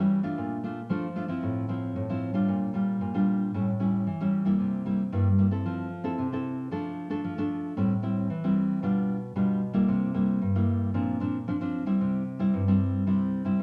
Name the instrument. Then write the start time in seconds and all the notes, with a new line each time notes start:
nylon-string guitar
Already playing: E3
0.00 G3 C#4 E4
0.23 A3 D4 F4
0.38 A#2
0.64 A3 D4 F4
0.90 F3 A3 D4 F4
1.16 A3 D4 F4
1.28 F3 C4 E4
1.43 A2
1.69 F3 C4 E4
1.96 A2
2.09 F3 C4 E4
2.34 G3 D4 F4
2.48 A#2
2.74 G3 D4 F4
3.01 A#2
3.14 G3 D4 F4
3.54 A2 G3 C#4 E4
3.80 G3 C#4 E4
4.07 E3
4.21 G3 C#4 E4
4.45 G3 A#3 E4
4.60 C3
4.86 G3 A#3 E4
5.12 G2 G3 A#3 E4
5.38 G3 A#3 E4
5.51 C4 E4 A4
5.66 F3
6.04 C4 E4 A4
6.18 C3
6.32 C4 E4 A4
6.71 F3 A3 D4 A4
7.10 A3 D4 A4
7.24 F3
7.38 A3 D4 A4
7.77 A2 G3 C4 E4
8.02 G3 C4 E4
8.30 E3
8.44 G3 C4 E4
8.82 B2 G3 D4 F4
9.36 B2 G3 D4 F4
9.73 G3 A#3 E4
9.88 C3
10.14 G3 A#3 E4
10.41 G2
10.55 G3 A#3 E4
10.94 A#2 F3 C4 D4
11.20 F3 C4 D4
11.48 F3 C4 D4
11.61 F3 C4 D4
11.86 G3 C4 E4
12.01 C3
12.39 G3 C4 E4
12.54 G2
12.68 G3 C4 E4
13.07 C3 G3 C4 E4
13.45 G3 C4 E4
13.59 G2